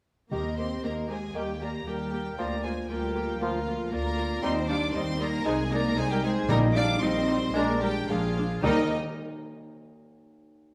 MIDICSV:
0, 0, Header, 1, 11, 480
1, 0, Start_track
1, 0, Key_signature, -3, "major"
1, 0, Tempo, 514580
1, 303, Time_signature, 4, 2, 24, 8
1, 6060, Tempo, 536193
1, 9861, End_track
2, 0, Start_track
2, 0, Title_t, "Violin section"
2, 0, Program_c, 0, 48
2, 297, Note_on_c, 0, 82, 56
2, 525, Note_off_c, 0, 82, 0
2, 541, Note_on_c, 0, 84, 55
2, 780, Note_off_c, 0, 84, 0
2, 785, Note_on_c, 0, 82, 55
2, 860, Note_off_c, 0, 82, 0
2, 1026, Note_on_c, 0, 80, 52
2, 1263, Note_off_c, 0, 80, 0
2, 1272, Note_on_c, 0, 79, 52
2, 1509, Note_on_c, 0, 82, 57
2, 1511, Note_off_c, 0, 79, 0
2, 1749, Note_off_c, 0, 82, 0
2, 1758, Note_on_c, 0, 79, 59
2, 2232, Note_off_c, 0, 79, 0
2, 2233, Note_on_c, 0, 82, 62
2, 2469, Note_off_c, 0, 82, 0
2, 2472, Note_on_c, 0, 80, 60
2, 2704, Note_off_c, 0, 80, 0
2, 2710, Note_on_c, 0, 79, 59
2, 3177, Note_off_c, 0, 79, 0
2, 3183, Note_on_c, 0, 77, 58
2, 3660, Note_on_c, 0, 82, 80
2, 3663, Note_off_c, 0, 77, 0
2, 4128, Note_on_c, 0, 84, 79
2, 4129, Note_off_c, 0, 82, 0
2, 4202, Note_off_c, 0, 84, 0
2, 4371, Note_on_c, 0, 86, 72
2, 4608, Note_off_c, 0, 86, 0
2, 4614, Note_on_c, 0, 84, 79
2, 4848, Note_off_c, 0, 84, 0
2, 4854, Note_on_c, 0, 82, 87
2, 5092, Note_off_c, 0, 82, 0
2, 5094, Note_on_c, 0, 80, 81
2, 5327, Note_on_c, 0, 82, 89
2, 5333, Note_off_c, 0, 80, 0
2, 5570, Note_off_c, 0, 82, 0
2, 5571, Note_on_c, 0, 80, 92
2, 5693, Note_off_c, 0, 80, 0
2, 5702, Note_on_c, 0, 79, 83
2, 5814, Note_on_c, 0, 80, 84
2, 5819, Note_off_c, 0, 79, 0
2, 5889, Note_off_c, 0, 80, 0
2, 6052, Note_on_c, 0, 82, 93
2, 6124, Note_off_c, 0, 82, 0
2, 6281, Note_on_c, 0, 86, 97
2, 6516, Note_off_c, 0, 86, 0
2, 6524, Note_on_c, 0, 84, 83
2, 6998, Note_off_c, 0, 84, 0
2, 6999, Note_on_c, 0, 82, 88
2, 7071, Note_off_c, 0, 82, 0
2, 7248, Note_on_c, 0, 79, 83
2, 7480, Note_off_c, 0, 79, 0
2, 7491, Note_on_c, 0, 77, 73
2, 7976, Note_off_c, 0, 77, 0
2, 7978, Note_on_c, 0, 75, 92
2, 8243, Note_off_c, 0, 75, 0
2, 9861, End_track
3, 0, Start_track
3, 0, Title_t, "Flute"
3, 0, Program_c, 1, 73
3, 300, Note_on_c, 1, 75, 49
3, 527, Note_off_c, 1, 75, 0
3, 541, Note_on_c, 1, 75, 50
3, 769, Note_off_c, 1, 75, 0
3, 774, Note_on_c, 1, 75, 49
3, 1011, Note_off_c, 1, 75, 0
3, 1016, Note_on_c, 1, 72, 44
3, 1072, Note_off_c, 1, 72, 0
3, 1259, Note_on_c, 1, 70, 49
3, 1315, Note_off_c, 1, 70, 0
3, 1509, Note_on_c, 1, 74, 48
3, 1565, Note_off_c, 1, 74, 0
3, 1746, Note_on_c, 1, 70, 52
3, 2217, Note_off_c, 1, 70, 0
3, 2222, Note_on_c, 1, 74, 51
3, 2460, Note_on_c, 1, 72, 47
3, 2474, Note_off_c, 1, 74, 0
3, 2692, Note_off_c, 1, 72, 0
3, 2697, Note_on_c, 1, 70, 53
3, 3166, Note_off_c, 1, 70, 0
3, 3171, Note_on_c, 1, 70, 52
3, 3647, Note_off_c, 1, 70, 0
3, 3657, Note_on_c, 1, 74, 57
3, 4125, Note_off_c, 1, 74, 0
3, 4131, Note_on_c, 1, 75, 69
3, 4368, Note_off_c, 1, 75, 0
3, 4376, Note_on_c, 1, 77, 58
3, 4432, Note_off_c, 1, 77, 0
3, 4610, Note_on_c, 1, 75, 70
3, 4666, Note_off_c, 1, 75, 0
3, 4845, Note_on_c, 1, 74, 68
3, 4901, Note_off_c, 1, 74, 0
3, 5096, Note_on_c, 1, 72, 74
3, 5152, Note_off_c, 1, 72, 0
3, 5337, Note_on_c, 1, 74, 72
3, 5575, Note_on_c, 1, 72, 74
3, 5589, Note_off_c, 1, 74, 0
3, 5689, Note_off_c, 1, 72, 0
3, 5695, Note_on_c, 1, 70, 69
3, 5813, Note_off_c, 1, 70, 0
3, 5819, Note_on_c, 1, 72, 74
3, 6061, Note_on_c, 1, 75, 80
3, 6074, Note_off_c, 1, 72, 0
3, 6295, Note_on_c, 1, 77, 81
3, 6309, Note_off_c, 1, 75, 0
3, 6519, Note_off_c, 1, 77, 0
3, 6524, Note_on_c, 1, 75, 73
3, 6825, Note_off_c, 1, 75, 0
3, 7003, Note_on_c, 1, 74, 77
3, 7224, Note_off_c, 1, 74, 0
3, 7244, Note_on_c, 1, 70, 77
3, 7298, Note_off_c, 1, 70, 0
3, 7481, Note_on_c, 1, 68, 59
3, 7961, Note_off_c, 1, 68, 0
3, 7969, Note_on_c, 1, 70, 76
3, 8238, Note_off_c, 1, 70, 0
3, 9861, End_track
4, 0, Start_track
4, 0, Title_t, "Violin section"
4, 0, Program_c, 2, 48
4, 299, Note_on_c, 2, 70, 49
4, 527, Note_off_c, 2, 70, 0
4, 535, Note_on_c, 2, 72, 52
4, 782, Note_off_c, 2, 72, 0
4, 786, Note_on_c, 2, 70, 49
4, 1026, Note_on_c, 2, 68, 47
4, 1028, Note_off_c, 2, 70, 0
4, 1261, Note_on_c, 2, 67, 46
4, 1268, Note_off_c, 2, 68, 0
4, 1502, Note_on_c, 2, 70, 46
4, 1505, Note_off_c, 2, 67, 0
4, 1577, Note_off_c, 2, 70, 0
4, 1742, Note_on_c, 2, 67, 48
4, 2215, Note_off_c, 2, 67, 0
4, 2227, Note_on_c, 2, 70, 52
4, 2302, Note_off_c, 2, 70, 0
4, 2453, Note_on_c, 2, 68, 49
4, 2527, Note_off_c, 2, 68, 0
4, 2700, Note_on_c, 2, 67, 51
4, 3172, Note_off_c, 2, 67, 0
4, 3180, Note_on_c, 2, 65, 56
4, 3651, Note_off_c, 2, 65, 0
4, 3660, Note_on_c, 2, 70, 65
4, 4130, Note_off_c, 2, 70, 0
4, 4139, Note_on_c, 2, 72, 74
4, 4377, Note_off_c, 2, 72, 0
4, 4381, Note_on_c, 2, 74, 63
4, 4613, Note_on_c, 2, 72, 67
4, 4617, Note_off_c, 2, 74, 0
4, 4852, Note_off_c, 2, 72, 0
4, 4858, Note_on_c, 2, 70, 74
4, 5081, Note_on_c, 2, 68, 69
4, 5089, Note_off_c, 2, 70, 0
4, 5326, Note_off_c, 2, 68, 0
4, 5331, Note_on_c, 2, 70, 70
4, 5572, Note_on_c, 2, 68, 78
4, 5573, Note_off_c, 2, 70, 0
4, 5688, Note_on_c, 2, 67, 72
4, 5693, Note_off_c, 2, 68, 0
4, 5812, Note_off_c, 2, 67, 0
4, 5818, Note_on_c, 2, 68, 80
4, 6059, Note_off_c, 2, 68, 0
4, 6063, Note_on_c, 2, 70, 84
4, 6134, Note_off_c, 2, 70, 0
4, 6294, Note_on_c, 2, 74, 87
4, 6365, Note_off_c, 2, 74, 0
4, 6529, Note_on_c, 2, 72, 74
4, 6989, Note_on_c, 2, 70, 80
4, 6991, Note_off_c, 2, 72, 0
4, 7233, Note_on_c, 2, 67, 71
4, 7234, Note_off_c, 2, 70, 0
4, 7475, Note_on_c, 2, 65, 59
4, 7478, Note_off_c, 2, 67, 0
4, 7958, Note_off_c, 2, 65, 0
4, 7975, Note_on_c, 2, 63, 80
4, 8241, Note_off_c, 2, 63, 0
4, 9861, End_track
5, 0, Start_track
5, 0, Title_t, "Clarinet"
5, 0, Program_c, 3, 71
5, 297, Note_on_c, 3, 67, 44
5, 468, Note_off_c, 3, 67, 0
5, 1269, Note_on_c, 3, 67, 44
5, 1437, Note_off_c, 3, 67, 0
5, 2234, Note_on_c, 3, 65, 49
5, 2398, Note_off_c, 3, 65, 0
5, 3186, Note_on_c, 3, 65, 53
5, 3353, Note_off_c, 3, 65, 0
5, 4135, Note_on_c, 3, 63, 56
5, 4303, Note_off_c, 3, 63, 0
5, 5097, Note_on_c, 3, 63, 67
5, 5262, Note_off_c, 3, 63, 0
5, 6062, Note_on_c, 3, 63, 69
5, 6223, Note_off_c, 3, 63, 0
5, 7016, Note_on_c, 3, 62, 75
5, 7178, Note_off_c, 3, 62, 0
5, 7975, Note_on_c, 3, 63, 77
5, 8175, Note_off_c, 3, 63, 0
5, 9861, End_track
6, 0, Start_track
6, 0, Title_t, "Viola section"
6, 0, Program_c, 4, 48
6, 302, Note_on_c, 4, 58, 39
6, 304, Note_on_c, 4, 67, 38
6, 377, Note_off_c, 4, 58, 0
6, 379, Note_off_c, 4, 67, 0
6, 543, Note_on_c, 4, 67, 35
6, 544, Note_on_c, 4, 58, 34
6, 618, Note_off_c, 4, 67, 0
6, 619, Note_off_c, 4, 58, 0
6, 785, Note_on_c, 4, 67, 39
6, 786, Note_on_c, 4, 58, 36
6, 860, Note_off_c, 4, 67, 0
6, 861, Note_off_c, 4, 58, 0
6, 1018, Note_on_c, 4, 67, 36
6, 1019, Note_on_c, 4, 58, 36
6, 1092, Note_off_c, 4, 67, 0
6, 1093, Note_off_c, 4, 58, 0
6, 1259, Note_on_c, 4, 58, 42
6, 1263, Note_on_c, 4, 67, 40
6, 1334, Note_off_c, 4, 58, 0
6, 1337, Note_off_c, 4, 67, 0
6, 1497, Note_on_c, 4, 67, 35
6, 1499, Note_on_c, 4, 58, 36
6, 1571, Note_off_c, 4, 67, 0
6, 1574, Note_off_c, 4, 58, 0
6, 1739, Note_on_c, 4, 67, 39
6, 1742, Note_on_c, 4, 58, 38
6, 1813, Note_off_c, 4, 67, 0
6, 1817, Note_off_c, 4, 58, 0
6, 1983, Note_on_c, 4, 67, 38
6, 1986, Note_on_c, 4, 58, 37
6, 2058, Note_off_c, 4, 67, 0
6, 2061, Note_off_c, 4, 58, 0
6, 2223, Note_on_c, 4, 65, 42
6, 2226, Note_on_c, 4, 58, 41
6, 2297, Note_off_c, 4, 65, 0
6, 2301, Note_off_c, 4, 58, 0
6, 2469, Note_on_c, 4, 65, 37
6, 2470, Note_on_c, 4, 58, 37
6, 2544, Note_off_c, 4, 58, 0
6, 2544, Note_off_c, 4, 65, 0
6, 2704, Note_on_c, 4, 58, 40
6, 2707, Note_on_c, 4, 65, 42
6, 2779, Note_off_c, 4, 58, 0
6, 2781, Note_off_c, 4, 65, 0
6, 2941, Note_on_c, 4, 58, 43
6, 2943, Note_on_c, 4, 65, 41
6, 3016, Note_off_c, 4, 58, 0
6, 3017, Note_off_c, 4, 65, 0
6, 3178, Note_on_c, 4, 58, 47
6, 3180, Note_on_c, 4, 65, 46
6, 3253, Note_off_c, 4, 58, 0
6, 3255, Note_off_c, 4, 65, 0
6, 3422, Note_on_c, 4, 65, 43
6, 3423, Note_on_c, 4, 58, 40
6, 3496, Note_off_c, 4, 65, 0
6, 3498, Note_off_c, 4, 58, 0
6, 3659, Note_on_c, 4, 58, 47
6, 3663, Note_on_c, 4, 65, 47
6, 3734, Note_off_c, 4, 58, 0
6, 3737, Note_off_c, 4, 65, 0
6, 3905, Note_on_c, 4, 58, 44
6, 3906, Note_on_c, 4, 65, 43
6, 3980, Note_off_c, 4, 58, 0
6, 3980, Note_off_c, 4, 65, 0
6, 4141, Note_on_c, 4, 63, 55
6, 4142, Note_on_c, 4, 55, 50
6, 4216, Note_off_c, 4, 55, 0
6, 4216, Note_off_c, 4, 63, 0
6, 4379, Note_on_c, 4, 63, 48
6, 4382, Note_on_c, 4, 55, 49
6, 4454, Note_off_c, 4, 63, 0
6, 4457, Note_off_c, 4, 55, 0
6, 4613, Note_on_c, 4, 55, 56
6, 4613, Note_on_c, 4, 63, 52
6, 4688, Note_off_c, 4, 55, 0
6, 4688, Note_off_c, 4, 63, 0
6, 4855, Note_on_c, 4, 55, 55
6, 4856, Note_on_c, 4, 63, 57
6, 4930, Note_off_c, 4, 55, 0
6, 4931, Note_off_c, 4, 63, 0
6, 5092, Note_on_c, 4, 56, 62
6, 5093, Note_on_c, 4, 63, 60
6, 5166, Note_off_c, 4, 56, 0
6, 5167, Note_off_c, 4, 63, 0
6, 5326, Note_on_c, 4, 56, 50
6, 5331, Note_on_c, 4, 63, 55
6, 5401, Note_off_c, 4, 56, 0
6, 5406, Note_off_c, 4, 63, 0
6, 5573, Note_on_c, 4, 56, 62
6, 5573, Note_on_c, 4, 63, 62
6, 5647, Note_off_c, 4, 56, 0
6, 5647, Note_off_c, 4, 63, 0
6, 5822, Note_on_c, 4, 63, 58
6, 5823, Note_on_c, 4, 56, 55
6, 5896, Note_off_c, 4, 63, 0
6, 5898, Note_off_c, 4, 56, 0
6, 6061, Note_on_c, 4, 63, 66
6, 6062, Note_on_c, 4, 55, 68
6, 6133, Note_off_c, 4, 63, 0
6, 6134, Note_off_c, 4, 55, 0
6, 6290, Note_on_c, 4, 63, 55
6, 6291, Note_on_c, 4, 55, 63
6, 6362, Note_off_c, 4, 63, 0
6, 6363, Note_off_c, 4, 55, 0
6, 6533, Note_on_c, 4, 63, 65
6, 6535, Note_on_c, 4, 55, 60
6, 6605, Note_off_c, 4, 63, 0
6, 6607, Note_off_c, 4, 55, 0
6, 6764, Note_on_c, 4, 63, 60
6, 6765, Note_on_c, 4, 55, 59
6, 6835, Note_off_c, 4, 63, 0
6, 6836, Note_off_c, 4, 55, 0
6, 7006, Note_on_c, 4, 56, 68
6, 7006, Note_on_c, 4, 62, 71
6, 7078, Note_off_c, 4, 56, 0
6, 7078, Note_off_c, 4, 62, 0
6, 7251, Note_on_c, 4, 62, 58
6, 7253, Note_on_c, 4, 56, 57
6, 7323, Note_off_c, 4, 62, 0
6, 7324, Note_off_c, 4, 56, 0
6, 7494, Note_on_c, 4, 62, 59
6, 7495, Note_on_c, 4, 56, 59
6, 7566, Note_off_c, 4, 56, 0
6, 7566, Note_off_c, 4, 62, 0
6, 7734, Note_on_c, 4, 56, 55
6, 7737, Note_on_c, 4, 62, 54
6, 7806, Note_off_c, 4, 56, 0
6, 7809, Note_off_c, 4, 62, 0
6, 7977, Note_on_c, 4, 55, 68
6, 7978, Note_on_c, 4, 63, 66
6, 8242, Note_off_c, 4, 55, 0
6, 8243, Note_off_c, 4, 63, 0
6, 9861, End_track
7, 0, Start_track
7, 0, Title_t, "Cello section"
7, 0, Program_c, 5, 48
7, 296, Note_on_c, 5, 58, 45
7, 525, Note_off_c, 5, 58, 0
7, 541, Note_on_c, 5, 60, 46
7, 780, Note_off_c, 5, 60, 0
7, 785, Note_on_c, 5, 58, 46
7, 1024, Note_on_c, 5, 56, 47
7, 1028, Note_off_c, 5, 58, 0
7, 1267, Note_off_c, 5, 56, 0
7, 1267, Note_on_c, 5, 55, 48
7, 1508, Note_off_c, 5, 55, 0
7, 1514, Note_on_c, 5, 58, 48
7, 1747, Note_off_c, 5, 58, 0
7, 1751, Note_on_c, 5, 55, 53
7, 2220, Note_off_c, 5, 55, 0
7, 2225, Note_on_c, 5, 58, 52
7, 2460, Note_off_c, 5, 58, 0
7, 2467, Note_on_c, 5, 56, 49
7, 2542, Note_off_c, 5, 56, 0
7, 2703, Note_on_c, 5, 55, 57
7, 3174, Note_off_c, 5, 55, 0
7, 3179, Note_on_c, 5, 53, 58
7, 3660, Note_on_c, 5, 58, 66
7, 3661, Note_off_c, 5, 53, 0
7, 4136, Note_on_c, 5, 60, 75
7, 4139, Note_off_c, 5, 58, 0
7, 4371, Note_off_c, 5, 60, 0
7, 4373, Note_on_c, 5, 62, 63
7, 4613, Note_off_c, 5, 62, 0
7, 4616, Note_on_c, 5, 60, 70
7, 4850, Note_on_c, 5, 58, 73
7, 4854, Note_off_c, 5, 60, 0
7, 5090, Note_off_c, 5, 58, 0
7, 5094, Note_on_c, 5, 56, 75
7, 5168, Note_off_c, 5, 56, 0
7, 5329, Note_on_c, 5, 58, 77
7, 5567, Note_off_c, 5, 58, 0
7, 5569, Note_on_c, 5, 56, 76
7, 5692, Note_off_c, 5, 56, 0
7, 5694, Note_on_c, 5, 55, 72
7, 5814, Note_on_c, 5, 56, 77
7, 5815, Note_off_c, 5, 55, 0
7, 6056, Note_on_c, 5, 58, 76
7, 6057, Note_off_c, 5, 56, 0
7, 6286, Note_off_c, 5, 58, 0
7, 6290, Note_on_c, 5, 62, 87
7, 6521, Note_on_c, 5, 60, 76
7, 6525, Note_off_c, 5, 62, 0
7, 6987, Note_off_c, 5, 60, 0
7, 6997, Note_on_c, 5, 58, 83
7, 7233, Note_off_c, 5, 58, 0
7, 7239, Note_on_c, 5, 55, 70
7, 7311, Note_off_c, 5, 55, 0
7, 7478, Note_on_c, 5, 53, 59
7, 7960, Note_off_c, 5, 53, 0
7, 7969, Note_on_c, 5, 51, 75
7, 8238, Note_off_c, 5, 51, 0
7, 9861, End_track
8, 0, Start_track
8, 0, Title_t, "French horn section"
8, 0, Program_c, 6, 60
8, 287, Note_on_c, 6, 58, 46
8, 290, Note_on_c, 6, 67, 46
8, 2185, Note_off_c, 6, 67, 0
8, 2235, Note_on_c, 6, 65, 54
8, 4095, Note_off_c, 6, 58, 0
8, 4142, Note_on_c, 6, 63, 67
8, 4143, Note_on_c, 6, 55, 57
8, 4144, Note_off_c, 6, 65, 0
8, 5074, Note_off_c, 6, 55, 0
8, 5093, Note_on_c, 6, 56, 64
8, 6050, Note_on_c, 6, 55, 75
8, 6058, Note_off_c, 6, 56, 0
8, 6976, Note_off_c, 6, 55, 0
8, 6999, Note_off_c, 6, 63, 0
8, 7007, Note_on_c, 6, 56, 76
8, 7008, Note_on_c, 6, 62, 73
8, 7716, Note_off_c, 6, 62, 0
8, 7730, Note_off_c, 6, 56, 0
8, 7970, Note_on_c, 6, 55, 80
8, 7975, Note_on_c, 6, 63, 80
8, 8171, Note_off_c, 6, 55, 0
8, 8174, Note_off_c, 6, 63, 0
8, 9861, End_track
9, 0, Start_track
9, 0, Title_t, "Bassoon"
9, 0, Program_c, 7, 70
9, 292, Note_on_c, 7, 51, 39
9, 465, Note_off_c, 7, 51, 0
9, 1257, Note_on_c, 7, 51, 45
9, 1429, Note_off_c, 7, 51, 0
9, 2225, Note_on_c, 7, 53, 46
9, 2393, Note_off_c, 7, 53, 0
9, 3193, Note_on_c, 7, 53, 54
9, 3357, Note_off_c, 7, 53, 0
9, 4128, Note_on_c, 7, 55, 60
9, 4298, Note_off_c, 7, 55, 0
9, 5088, Note_on_c, 7, 56, 69
9, 5256, Note_off_c, 7, 56, 0
9, 6051, Note_on_c, 7, 55, 69
9, 6217, Note_off_c, 7, 55, 0
9, 6991, Note_on_c, 7, 56, 73
9, 7161, Note_off_c, 7, 56, 0
9, 7969, Note_on_c, 7, 55, 71
9, 8170, Note_off_c, 7, 55, 0
9, 9861, End_track
10, 0, Start_track
10, 0, Title_t, "Timpani"
10, 0, Program_c, 8, 47
10, 292, Note_on_c, 8, 51, 56
10, 986, Note_off_c, 8, 51, 0
10, 6049, Note_on_c, 8, 46, 82
10, 6721, Note_off_c, 8, 46, 0
10, 7972, Note_on_c, 8, 51, 93
10, 8195, Note_off_c, 8, 51, 0
10, 9861, End_track
11, 0, Start_track
11, 0, Title_t, "Double bass section"
11, 0, Program_c, 10, 48
11, 292, Note_on_c, 10, 39, 45
11, 725, Note_off_c, 10, 39, 0
11, 783, Note_on_c, 10, 39, 44
11, 1210, Note_off_c, 10, 39, 0
11, 1263, Note_on_c, 10, 39, 48
11, 1690, Note_off_c, 10, 39, 0
11, 1741, Note_on_c, 10, 39, 48
11, 2167, Note_off_c, 10, 39, 0
11, 2227, Note_on_c, 10, 38, 49
11, 2649, Note_off_c, 10, 38, 0
11, 2703, Note_on_c, 10, 38, 50
11, 3127, Note_off_c, 10, 38, 0
11, 3180, Note_on_c, 10, 38, 59
11, 3605, Note_off_c, 10, 38, 0
11, 3661, Note_on_c, 10, 38, 59
11, 4084, Note_off_c, 10, 38, 0
11, 4136, Note_on_c, 10, 39, 67
11, 4558, Note_off_c, 10, 39, 0
11, 4615, Note_on_c, 10, 39, 65
11, 5035, Note_off_c, 10, 39, 0
11, 5091, Note_on_c, 10, 36, 70
11, 5515, Note_off_c, 10, 36, 0
11, 5569, Note_on_c, 10, 36, 73
11, 5998, Note_off_c, 10, 36, 0
11, 6059, Note_on_c, 10, 34, 79
11, 6472, Note_off_c, 10, 34, 0
11, 6524, Note_on_c, 10, 34, 74
11, 6942, Note_off_c, 10, 34, 0
11, 6997, Note_on_c, 10, 34, 76
11, 7422, Note_off_c, 10, 34, 0
11, 7479, Note_on_c, 10, 34, 70
11, 7913, Note_off_c, 10, 34, 0
11, 7973, Note_on_c, 10, 39, 78
11, 8240, Note_off_c, 10, 39, 0
11, 9861, End_track
0, 0, End_of_file